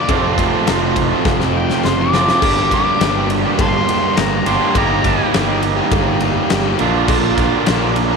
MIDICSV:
0, 0, Header, 1, 8, 480
1, 0, Start_track
1, 0, Key_signature, -2, "minor"
1, 0, Tempo, 583658
1, 80, Time_signature, 4, 2, 24, 8
1, 6716, End_track
2, 0, Start_track
2, 0, Title_t, "Harmonica"
2, 0, Program_c, 0, 22
2, 0, Note_on_c, 0, 74, 111
2, 292, Note_off_c, 0, 74, 0
2, 1284, Note_on_c, 0, 79, 98
2, 1512, Note_off_c, 0, 79, 0
2, 1521, Note_on_c, 0, 84, 91
2, 1630, Note_off_c, 0, 84, 0
2, 1647, Note_on_c, 0, 86, 108
2, 2222, Note_off_c, 0, 86, 0
2, 2252, Note_on_c, 0, 86, 99
2, 2708, Note_off_c, 0, 86, 0
2, 2971, Note_on_c, 0, 77, 79
2, 2971, Note_on_c, 0, 81, 79
2, 2971, Note_on_c, 0, 84, 112
2, 3029, Note_off_c, 0, 81, 0
2, 3043, Note_off_c, 0, 77, 0
2, 3436, Note_on_c, 0, 82, 96
2, 3449, Note_off_c, 0, 84, 0
2, 3683, Note_on_c, 0, 84, 102
2, 3695, Note_off_c, 0, 82, 0
2, 3911, Note_off_c, 0, 84, 0
2, 3928, Note_on_c, 0, 82, 110
2, 4386, Note_off_c, 0, 82, 0
2, 6716, End_track
3, 0, Start_track
3, 0, Title_t, "Tonewheel organ"
3, 0, Program_c, 1, 16
3, 1746, Note_on_c, 1, 60, 65
3, 1763, Note_on_c, 1, 62, 67
3, 1790, Note_on_c, 1, 64, 65
3, 1817, Note_on_c, 1, 65, 62
3, 1833, Note_on_c, 1, 67, 63
3, 1862, Note_on_c, 1, 69, 61
3, 1878, Note_on_c, 1, 71, 66
3, 1908, Note_on_c, 1, 72, 65
3, 1928, Note_off_c, 1, 60, 0
3, 1928, Note_on_c, 1, 74, 62
3, 1936, Note_off_c, 1, 62, 0
3, 1945, Note_on_c, 1, 76, 64
3, 1950, Note_off_c, 1, 64, 0
3, 1963, Note_off_c, 1, 65, 0
3, 1970, Note_on_c, 1, 77, 65
3, 1971, Note_off_c, 1, 67, 0
3, 1986, Note_off_c, 1, 69, 0
3, 1994, Note_off_c, 1, 71, 0
3, 1997, Note_on_c, 1, 67, 68
3, 2000, Note_on_c, 1, 62, 71
3, 2004, Note_on_c, 1, 70, 70
3, 2009, Note_off_c, 1, 72, 0
3, 2019, Note_off_c, 1, 74, 0
3, 2027, Note_off_c, 1, 76, 0
3, 2040, Note_off_c, 1, 77, 0
3, 3895, Note_off_c, 1, 67, 0
3, 3896, Note_off_c, 1, 62, 0
3, 3897, Note_off_c, 1, 70, 0
3, 3906, Note_on_c, 1, 63, 73
3, 3907, Note_on_c, 1, 70, 70
3, 3908, Note_on_c, 1, 67, 70
3, 5571, Note_off_c, 1, 70, 0
3, 5575, Note_off_c, 1, 63, 0
3, 5575, Note_off_c, 1, 67, 0
3, 5581, Note_on_c, 1, 62, 73
3, 5581, Note_on_c, 1, 70, 73
3, 5583, Note_on_c, 1, 65, 76
3, 6716, Note_off_c, 1, 62, 0
3, 6716, Note_off_c, 1, 65, 0
3, 6716, Note_off_c, 1, 70, 0
3, 6716, End_track
4, 0, Start_track
4, 0, Title_t, "Distorted electric guitar"
4, 0, Program_c, 2, 30
4, 62, Note_on_c, 2, 41, 90
4, 66, Note_on_c, 2, 48, 96
4, 73, Note_on_c, 2, 53, 93
4, 79, Note_on_c, 2, 57, 105
4, 81, Note_on_c, 2, 60, 98
4, 85, Note_on_c, 2, 65, 115
4, 295, Note_off_c, 2, 53, 0
4, 305, Note_on_c, 2, 53, 82
4, 306, Note_off_c, 2, 57, 0
4, 316, Note_on_c, 2, 57, 83
4, 318, Note_off_c, 2, 60, 0
4, 324, Note_off_c, 2, 65, 0
4, 328, Note_on_c, 2, 60, 78
4, 334, Note_on_c, 2, 65, 87
4, 534, Note_off_c, 2, 41, 0
4, 539, Note_off_c, 2, 48, 0
4, 544, Note_on_c, 2, 41, 90
4, 549, Note_off_c, 2, 53, 0
4, 549, Note_on_c, 2, 48, 89
4, 553, Note_off_c, 2, 57, 0
4, 559, Note_off_c, 2, 60, 0
4, 559, Note_on_c, 2, 53, 112
4, 562, Note_on_c, 2, 57, 100
4, 564, Note_off_c, 2, 65, 0
4, 569, Note_on_c, 2, 60, 109
4, 574, Note_on_c, 2, 65, 109
4, 651, Note_off_c, 2, 65, 0
4, 661, Note_on_c, 2, 65, 77
4, 663, Note_off_c, 2, 60, 0
4, 669, Note_off_c, 2, 57, 0
4, 673, Note_on_c, 2, 60, 71
4, 679, Note_off_c, 2, 53, 0
4, 679, Note_on_c, 2, 57, 73
4, 689, Note_on_c, 2, 53, 70
4, 785, Note_off_c, 2, 53, 0
4, 788, Note_off_c, 2, 57, 0
4, 791, Note_off_c, 2, 60, 0
4, 791, Note_off_c, 2, 65, 0
4, 910, Note_off_c, 2, 41, 0
4, 911, Note_on_c, 2, 65, 69
4, 913, Note_off_c, 2, 48, 0
4, 921, Note_on_c, 2, 60, 74
4, 928, Note_on_c, 2, 57, 62
4, 940, Note_on_c, 2, 53, 62
4, 1140, Note_off_c, 2, 65, 0
4, 1150, Note_on_c, 2, 65, 66
4, 1152, Note_off_c, 2, 60, 0
4, 1157, Note_off_c, 2, 57, 0
4, 1162, Note_on_c, 2, 60, 75
4, 1167, Note_off_c, 2, 53, 0
4, 1167, Note_on_c, 2, 57, 61
4, 1176, Note_on_c, 2, 53, 58
4, 1255, Note_off_c, 2, 53, 0
4, 1265, Note_on_c, 2, 53, 79
4, 1268, Note_off_c, 2, 57, 0
4, 1273, Note_off_c, 2, 60, 0
4, 1278, Note_on_c, 2, 57, 81
4, 1283, Note_off_c, 2, 65, 0
4, 1283, Note_on_c, 2, 60, 90
4, 1293, Note_on_c, 2, 65, 84
4, 1375, Note_off_c, 2, 65, 0
4, 1385, Note_on_c, 2, 65, 72
4, 1386, Note_off_c, 2, 60, 0
4, 1396, Note_off_c, 2, 57, 0
4, 1396, Note_on_c, 2, 60, 77
4, 1404, Note_off_c, 2, 53, 0
4, 1405, Note_on_c, 2, 57, 70
4, 1414, Note_on_c, 2, 53, 58
4, 1512, Note_on_c, 2, 41, 95
4, 1514, Note_off_c, 2, 53, 0
4, 1516, Note_off_c, 2, 57, 0
4, 1517, Note_on_c, 2, 48, 93
4, 1524, Note_off_c, 2, 60, 0
4, 1524, Note_on_c, 2, 53, 107
4, 1526, Note_on_c, 2, 57, 99
4, 1529, Note_off_c, 2, 65, 0
4, 1534, Note_on_c, 2, 60, 109
4, 1538, Note_on_c, 2, 65, 112
4, 1623, Note_off_c, 2, 65, 0
4, 1632, Note_on_c, 2, 65, 68
4, 1633, Note_off_c, 2, 60, 0
4, 1639, Note_off_c, 2, 57, 0
4, 1643, Note_on_c, 2, 60, 72
4, 1647, Note_off_c, 2, 53, 0
4, 1649, Note_on_c, 2, 57, 64
4, 1657, Note_on_c, 2, 53, 64
4, 1735, Note_off_c, 2, 53, 0
4, 1745, Note_on_c, 2, 53, 74
4, 1750, Note_off_c, 2, 57, 0
4, 1755, Note_off_c, 2, 60, 0
4, 1760, Note_on_c, 2, 57, 84
4, 1764, Note_off_c, 2, 65, 0
4, 1765, Note_on_c, 2, 60, 84
4, 1774, Note_on_c, 2, 65, 91
4, 1873, Note_off_c, 2, 41, 0
4, 1876, Note_off_c, 2, 48, 0
4, 1975, Note_off_c, 2, 53, 0
4, 1983, Note_off_c, 2, 57, 0
4, 1985, Note_off_c, 2, 60, 0
4, 1986, Note_on_c, 2, 43, 92
4, 1990, Note_off_c, 2, 65, 0
4, 1993, Note_on_c, 2, 50, 94
4, 1997, Note_on_c, 2, 55, 101
4, 2003, Note_on_c, 2, 58, 104
4, 2010, Note_on_c, 2, 62, 105
4, 2014, Note_on_c, 2, 67, 106
4, 2229, Note_off_c, 2, 55, 0
4, 2232, Note_on_c, 2, 55, 78
4, 2239, Note_off_c, 2, 58, 0
4, 2240, Note_off_c, 2, 62, 0
4, 2243, Note_on_c, 2, 58, 74
4, 2250, Note_on_c, 2, 62, 77
4, 2256, Note_off_c, 2, 67, 0
4, 2259, Note_on_c, 2, 67, 94
4, 2467, Note_off_c, 2, 43, 0
4, 2467, Note_off_c, 2, 50, 0
4, 2470, Note_on_c, 2, 43, 93
4, 2477, Note_on_c, 2, 50, 88
4, 2478, Note_off_c, 2, 55, 0
4, 2481, Note_on_c, 2, 55, 92
4, 2482, Note_off_c, 2, 62, 0
4, 2484, Note_off_c, 2, 58, 0
4, 2487, Note_on_c, 2, 58, 105
4, 2492, Note_on_c, 2, 62, 91
4, 2493, Note_off_c, 2, 67, 0
4, 2496, Note_on_c, 2, 67, 101
4, 2583, Note_off_c, 2, 67, 0
4, 2592, Note_off_c, 2, 62, 0
4, 2593, Note_on_c, 2, 67, 78
4, 2602, Note_on_c, 2, 62, 70
4, 2608, Note_off_c, 2, 58, 0
4, 2610, Note_off_c, 2, 55, 0
4, 2611, Note_on_c, 2, 58, 68
4, 2620, Note_on_c, 2, 55, 66
4, 2704, Note_off_c, 2, 55, 0
4, 2711, Note_off_c, 2, 62, 0
4, 2712, Note_off_c, 2, 67, 0
4, 2713, Note_off_c, 2, 58, 0
4, 2832, Note_off_c, 2, 43, 0
4, 2835, Note_off_c, 2, 50, 0
4, 2836, Note_on_c, 2, 67, 73
4, 2845, Note_on_c, 2, 62, 71
4, 2851, Note_on_c, 2, 58, 65
4, 2864, Note_on_c, 2, 55, 61
4, 3066, Note_off_c, 2, 67, 0
4, 3076, Note_off_c, 2, 62, 0
4, 3076, Note_on_c, 2, 67, 69
4, 3086, Note_on_c, 2, 62, 69
4, 3091, Note_off_c, 2, 55, 0
4, 3093, Note_off_c, 2, 58, 0
4, 3096, Note_on_c, 2, 58, 69
4, 3101, Note_on_c, 2, 55, 59
4, 3183, Note_off_c, 2, 55, 0
4, 3193, Note_on_c, 2, 55, 82
4, 3203, Note_off_c, 2, 58, 0
4, 3203, Note_off_c, 2, 62, 0
4, 3206, Note_on_c, 2, 58, 89
4, 3210, Note_off_c, 2, 67, 0
4, 3212, Note_on_c, 2, 62, 84
4, 3220, Note_on_c, 2, 67, 92
4, 3300, Note_off_c, 2, 67, 0
4, 3310, Note_on_c, 2, 67, 72
4, 3311, Note_off_c, 2, 62, 0
4, 3321, Note_on_c, 2, 62, 77
4, 3324, Note_off_c, 2, 58, 0
4, 3327, Note_on_c, 2, 58, 70
4, 3328, Note_off_c, 2, 55, 0
4, 3338, Note_on_c, 2, 55, 64
4, 3425, Note_on_c, 2, 43, 98
4, 3430, Note_off_c, 2, 55, 0
4, 3434, Note_on_c, 2, 50, 93
4, 3438, Note_off_c, 2, 62, 0
4, 3440, Note_off_c, 2, 58, 0
4, 3440, Note_on_c, 2, 55, 99
4, 3442, Note_off_c, 2, 67, 0
4, 3443, Note_on_c, 2, 58, 105
4, 3448, Note_on_c, 2, 62, 103
4, 3452, Note_on_c, 2, 67, 105
4, 3532, Note_off_c, 2, 67, 0
4, 3542, Note_on_c, 2, 67, 66
4, 3544, Note_off_c, 2, 62, 0
4, 3554, Note_on_c, 2, 62, 65
4, 3559, Note_off_c, 2, 58, 0
4, 3561, Note_off_c, 2, 55, 0
4, 3562, Note_on_c, 2, 58, 63
4, 3571, Note_on_c, 2, 55, 57
4, 3651, Note_off_c, 2, 55, 0
4, 3661, Note_on_c, 2, 55, 75
4, 3665, Note_off_c, 2, 58, 0
4, 3668, Note_off_c, 2, 62, 0
4, 3668, Note_on_c, 2, 58, 83
4, 3675, Note_off_c, 2, 67, 0
4, 3678, Note_on_c, 2, 62, 86
4, 3685, Note_on_c, 2, 67, 85
4, 3789, Note_off_c, 2, 43, 0
4, 3793, Note_off_c, 2, 50, 0
4, 3889, Note_off_c, 2, 55, 0
4, 3899, Note_on_c, 2, 55, 102
4, 3901, Note_off_c, 2, 62, 0
4, 3905, Note_off_c, 2, 67, 0
4, 3908, Note_off_c, 2, 58, 0
4, 3911, Note_on_c, 2, 58, 98
4, 3921, Note_on_c, 2, 63, 110
4, 3929, Note_on_c, 2, 67, 111
4, 4125, Note_off_c, 2, 55, 0
4, 4135, Note_on_c, 2, 55, 86
4, 4143, Note_off_c, 2, 58, 0
4, 4145, Note_off_c, 2, 63, 0
4, 4147, Note_on_c, 2, 58, 89
4, 4152, Note_off_c, 2, 67, 0
4, 4155, Note_on_c, 2, 63, 90
4, 4162, Note_on_c, 2, 67, 89
4, 4376, Note_off_c, 2, 55, 0
4, 4386, Note_on_c, 2, 55, 96
4, 4394, Note_off_c, 2, 58, 0
4, 4395, Note_off_c, 2, 63, 0
4, 4397, Note_on_c, 2, 58, 103
4, 4403, Note_off_c, 2, 67, 0
4, 4405, Note_on_c, 2, 63, 107
4, 4413, Note_on_c, 2, 67, 114
4, 4492, Note_off_c, 2, 67, 0
4, 4502, Note_on_c, 2, 67, 82
4, 4505, Note_off_c, 2, 63, 0
4, 4515, Note_on_c, 2, 63, 68
4, 4527, Note_off_c, 2, 58, 0
4, 4530, Note_on_c, 2, 58, 60
4, 4622, Note_off_c, 2, 55, 0
4, 4627, Note_off_c, 2, 63, 0
4, 4630, Note_off_c, 2, 67, 0
4, 4633, Note_off_c, 2, 58, 0
4, 4743, Note_on_c, 2, 67, 73
4, 4759, Note_on_c, 2, 63, 73
4, 4770, Note_on_c, 2, 58, 65
4, 4974, Note_off_c, 2, 67, 0
4, 4984, Note_on_c, 2, 67, 68
4, 4989, Note_off_c, 2, 63, 0
4, 4999, Note_on_c, 2, 63, 65
4, 5003, Note_off_c, 2, 58, 0
4, 5013, Note_on_c, 2, 58, 58
4, 5104, Note_off_c, 2, 58, 0
4, 5105, Note_on_c, 2, 55, 80
4, 5113, Note_off_c, 2, 63, 0
4, 5114, Note_on_c, 2, 58, 80
4, 5121, Note_off_c, 2, 67, 0
4, 5123, Note_on_c, 2, 63, 81
4, 5130, Note_on_c, 2, 67, 93
4, 5220, Note_off_c, 2, 67, 0
4, 5230, Note_on_c, 2, 67, 77
4, 5232, Note_off_c, 2, 63, 0
4, 5242, Note_on_c, 2, 63, 69
4, 5246, Note_off_c, 2, 58, 0
4, 5256, Note_on_c, 2, 58, 60
4, 5336, Note_off_c, 2, 55, 0
4, 5345, Note_off_c, 2, 58, 0
4, 5346, Note_on_c, 2, 55, 90
4, 5354, Note_off_c, 2, 63, 0
4, 5355, Note_on_c, 2, 58, 95
4, 5364, Note_off_c, 2, 67, 0
4, 5364, Note_on_c, 2, 63, 111
4, 5374, Note_on_c, 2, 67, 111
4, 5456, Note_off_c, 2, 67, 0
4, 5466, Note_on_c, 2, 67, 80
4, 5475, Note_off_c, 2, 63, 0
4, 5484, Note_off_c, 2, 58, 0
4, 5484, Note_on_c, 2, 63, 66
4, 5494, Note_on_c, 2, 58, 63
4, 5576, Note_off_c, 2, 55, 0
4, 5576, Note_off_c, 2, 67, 0
4, 5585, Note_off_c, 2, 63, 0
4, 5589, Note_on_c, 2, 46, 101
4, 5590, Note_off_c, 2, 58, 0
4, 5596, Note_on_c, 2, 50, 108
4, 5603, Note_on_c, 2, 58, 99
4, 5608, Note_on_c, 2, 62, 109
4, 5612, Note_on_c, 2, 65, 114
4, 5815, Note_off_c, 2, 46, 0
4, 5825, Note_on_c, 2, 46, 103
4, 5827, Note_off_c, 2, 50, 0
4, 5833, Note_off_c, 2, 58, 0
4, 5836, Note_on_c, 2, 50, 104
4, 5838, Note_off_c, 2, 62, 0
4, 5843, Note_on_c, 2, 58, 103
4, 5848, Note_on_c, 2, 62, 100
4, 5852, Note_off_c, 2, 65, 0
4, 5855, Note_on_c, 2, 65, 107
4, 6060, Note_off_c, 2, 50, 0
4, 6068, Note_off_c, 2, 58, 0
4, 6069, Note_on_c, 2, 50, 82
4, 6077, Note_off_c, 2, 62, 0
4, 6078, Note_on_c, 2, 58, 85
4, 6087, Note_on_c, 2, 62, 94
4, 6089, Note_off_c, 2, 65, 0
4, 6092, Note_on_c, 2, 65, 96
4, 6304, Note_off_c, 2, 46, 0
4, 6314, Note_off_c, 2, 50, 0
4, 6314, Note_on_c, 2, 46, 94
4, 6321, Note_off_c, 2, 58, 0
4, 6324, Note_off_c, 2, 62, 0
4, 6324, Note_on_c, 2, 50, 104
4, 6331, Note_on_c, 2, 58, 105
4, 6334, Note_on_c, 2, 62, 104
4, 6341, Note_off_c, 2, 65, 0
4, 6344, Note_on_c, 2, 65, 112
4, 6433, Note_off_c, 2, 65, 0
4, 6437, Note_on_c, 2, 65, 86
4, 6442, Note_off_c, 2, 62, 0
4, 6451, Note_on_c, 2, 62, 78
4, 6453, Note_off_c, 2, 58, 0
4, 6463, Note_on_c, 2, 58, 69
4, 6550, Note_off_c, 2, 50, 0
4, 6552, Note_off_c, 2, 58, 0
4, 6553, Note_off_c, 2, 62, 0
4, 6562, Note_off_c, 2, 65, 0
4, 6666, Note_on_c, 2, 65, 73
4, 6676, Note_off_c, 2, 46, 0
4, 6682, Note_on_c, 2, 62, 73
4, 6716, Note_off_c, 2, 62, 0
4, 6716, Note_off_c, 2, 65, 0
4, 6716, End_track
5, 0, Start_track
5, 0, Title_t, "Overdriven electric guitar"
5, 0, Program_c, 3, 29
5, 1771, Note_on_c, 3, 48, 68
5, 1778, Note_on_c, 3, 41, 69
5, 1981, Note_off_c, 3, 41, 0
5, 1986, Note_off_c, 3, 48, 0
5, 3688, Note_on_c, 3, 50, 70
5, 3691, Note_on_c, 3, 43, 72
5, 3906, Note_off_c, 3, 50, 0
5, 3908, Note_off_c, 3, 43, 0
5, 6716, End_track
6, 0, Start_track
6, 0, Title_t, "Fingered electric bass"
6, 0, Program_c, 4, 33
6, 74, Note_on_c, 4, 29, 101
6, 441, Note_off_c, 4, 29, 0
6, 565, Note_on_c, 4, 29, 97
6, 928, Note_off_c, 4, 29, 0
6, 1032, Note_on_c, 4, 29, 100
6, 1399, Note_off_c, 4, 29, 0
6, 1524, Note_on_c, 4, 30, 90
6, 1886, Note_off_c, 4, 30, 0
6, 1994, Note_on_c, 4, 31, 98
6, 2177, Note_off_c, 4, 31, 0
6, 2475, Note_on_c, 4, 31, 104
6, 2840, Note_off_c, 4, 31, 0
6, 2951, Note_on_c, 4, 31, 98
6, 3135, Note_off_c, 4, 31, 0
6, 3434, Note_on_c, 4, 31, 98
6, 3617, Note_off_c, 4, 31, 0
6, 3671, Note_on_c, 4, 31, 94
6, 3763, Note_off_c, 4, 31, 0
6, 3904, Note_on_c, 4, 31, 102
6, 4274, Note_off_c, 4, 31, 0
6, 4397, Note_on_c, 4, 31, 98
6, 4762, Note_off_c, 4, 31, 0
6, 4862, Note_on_c, 4, 31, 101
6, 5234, Note_off_c, 4, 31, 0
6, 5358, Note_on_c, 4, 31, 92
6, 5540, Note_off_c, 4, 31, 0
6, 5598, Note_on_c, 4, 34, 102
6, 6147, Note_off_c, 4, 34, 0
6, 6319, Note_on_c, 4, 34, 108
6, 6685, Note_off_c, 4, 34, 0
6, 6716, End_track
7, 0, Start_track
7, 0, Title_t, "Muted distorted electric guitar strokes"
7, 795, Note_on_c, 9, 29, 45
7, 877, Note_off_c, 9, 29, 0
7, 2714, Note_on_c, 9, 29, 46
7, 2796, Note_off_c, 9, 29, 0
7, 4632, Note_on_c, 9, 29, 45
7, 4714, Note_off_c, 9, 29, 0
7, 6559, Note_on_c, 9, 29, 46
7, 6642, Note_off_c, 9, 29, 0
7, 6716, End_track
8, 0, Start_track
8, 0, Title_t, "Drums"
8, 71, Note_on_c, 9, 36, 111
8, 73, Note_on_c, 9, 56, 110
8, 74, Note_on_c, 9, 51, 102
8, 154, Note_off_c, 9, 36, 0
8, 156, Note_off_c, 9, 51, 0
8, 156, Note_off_c, 9, 56, 0
8, 311, Note_on_c, 9, 36, 93
8, 317, Note_on_c, 9, 51, 80
8, 393, Note_off_c, 9, 36, 0
8, 399, Note_off_c, 9, 51, 0
8, 551, Note_on_c, 9, 56, 77
8, 553, Note_on_c, 9, 51, 105
8, 557, Note_on_c, 9, 38, 119
8, 633, Note_off_c, 9, 56, 0
8, 635, Note_off_c, 9, 51, 0
8, 639, Note_off_c, 9, 38, 0
8, 790, Note_on_c, 9, 36, 80
8, 792, Note_on_c, 9, 51, 79
8, 872, Note_off_c, 9, 36, 0
8, 874, Note_off_c, 9, 51, 0
8, 1030, Note_on_c, 9, 36, 113
8, 1033, Note_on_c, 9, 56, 103
8, 1037, Note_on_c, 9, 38, 68
8, 1112, Note_off_c, 9, 36, 0
8, 1115, Note_off_c, 9, 56, 0
8, 1119, Note_off_c, 9, 38, 0
8, 1155, Note_on_c, 9, 38, 61
8, 1237, Note_off_c, 9, 38, 0
8, 1396, Note_on_c, 9, 38, 73
8, 1478, Note_off_c, 9, 38, 0
8, 1509, Note_on_c, 9, 56, 82
8, 1518, Note_on_c, 9, 38, 98
8, 1591, Note_off_c, 9, 56, 0
8, 1600, Note_off_c, 9, 38, 0
8, 1756, Note_on_c, 9, 38, 101
8, 1839, Note_off_c, 9, 38, 0
8, 1879, Note_on_c, 9, 38, 100
8, 1962, Note_off_c, 9, 38, 0
8, 1992, Note_on_c, 9, 36, 115
8, 1992, Note_on_c, 9, 56, 98
8, 1998, Note_on_c, 9, 49, 104
8, 2074, Note_off_c, 9, 36, 0
8, 2074, Note_off_c, 9, 56, 0
8, 2080, Note_off_c, 9, 49, 0
8, 2232, Note_on_c, 9, 36, 84
8, 2235, Note_on_c, 9, 51, 80
8, 2314, Note_off_c, 9, 36, 0
8, 2318, Note_off_c, 9, 51, 0
8, 2471, Note_on_c, 9, 56, 70
8, 2474, Note_on_c, 9, 51, 111
8, 2478, Note_on_c, 9, 38, 117
8, 2553, Note_off_c, 9, 56, 0
8, 2556, Note_off_c, 9, 51, 0
8, 2560, Note_off_c, 9, 38, 0
8, 2713, Note_on_c, 9, 51, 77
8, 2795, Note_off_c, 9, 51, 0
8, 2949, Note_on_c, 9, 56, 97
8, 2951, Note_on_c, 9, 36, 123
8, 2954, Note_on_c, 9, 51, 107
8, 3032, Note_off_c, 9, 56, 0
8, 3033, Note_off_c, 9, 36, 0
8, 3036, Note_off_c, 9, 51, 0
8, 3196, Note_on_c, 9, 51, 79
8, 3279, Note_off_c, 9, 51, 0
8, 3429, Note_on_c, 9, 56, 82
8, 3430, Note_on_c, 9, 51, 112
8, 3435, Note_on_c, 9, 38, 126
8, 3512, Note_off_c, 9, 56, 0
8, 3513, Note_off_c, 9, 51, 0
8, 3517, Note_off_c, 9, 38, 0
8, 3670, Note_on_c, 9, 51, 87
8, 3752, Note_off_c, 9, 51, 0
8, 3906, Note_on_c, 9, 56, 96
8, 3908, Note_on_c, 9, 36, 113
8, 3910, Note_on_c, 9, 51, 114
8, 3988, Note_off_c, 9, 56, 0
8, 3990, Note_off_c, 9, 36, 0
8, 3992, Note_off_c, 9, 51, 0
8, 4148, Note_on_c, 9, 36, 89
8, 4150, Note_on_c, 9, 51, 77
8, 4230, Note_off_c, 9, 36, 0
8, 4232, Note_off_c, 9, 51, 0
8, 4392, Note_on_c, 9, 51, 107
8, 4396, Note_on_c, 9, 38, 118
8, 4397, Note_on_c, 9, 56, 75
8, 4474, Note_off_c, 9, 51, 0
8, 4478, Note_off_c, 9, 38, 0
8, 4479, Note_off_c, 9, 56, 0
8, 4627, Note_on_c, 9, 51, 81
8, 4709, Note_off_c, 9, 51, 0
8, 4864, Note_on_c, 9, 51, 103
8, 4865, Note_on_c, 9, 36, 116
8, 4871, Note_on_c, 9, 56, 96
8, 4947, Note_off_c, 9, 36, 0
8, 4947, Note_off_c, 9, 51, 0
8, 4953, Note_off_c, 9, 56, 0
8, 5103, Note_on_c, 9, 51, 75
8, 5185, Note_off_c, 9, 51, 0
8, 5345, Note_on_c, 9, 51, 103
8, 5349, Note_on_c, 9, 38, 117
8, 5355, Note_on_c, 9, 56, 80
8, 5427, Note_off_c, 9, 51, 0
8, 5431, Note_off_c, 9, 38, 0
8, 5437, Note_off_c, 9, 56, 0
8, 5582, Note_on_c, 9, 51, 73
8, 5664, Note_off_c, 9, 51, 0
8, 5823, Note_on_c, 9, 49, 106
8, 5825, Note_on_c, 9, 36, 108
8, 5831, Note_on_c, 9, 56, 105
8, 5905, Note_off_c, 9, 49, 0
8, 5908, Note_off_c, 9, 36, 0
8, 5913, Note_off_c, 9, 56, 0
8, 6066, Note_on_c, 9, 51, 75
8, 6067, Note_on_c, 9, 36, 89
8, 6149, Note_off_c, 9, 36, 0
8, 6149, Note_off_c, 9, 51, 0
8, 6302, Note_on_c, 9, 51, 106
8, 6307, Note_on_c, 9, 38, 112
8, 6309, Note_on_c, 9, 56, 77
8, 6385, Note_off_c, 9, 51, 0
8, 6389, Note_off_c, 9, 38, 0
8, 6391, Note_off_c, 9, 56, 0
8, 6546, Note_on_c, 9, 51, 77
8, 6628, Note_off_c, 9, 51, 0
8, 6716, End_track
0, 0, End_of_file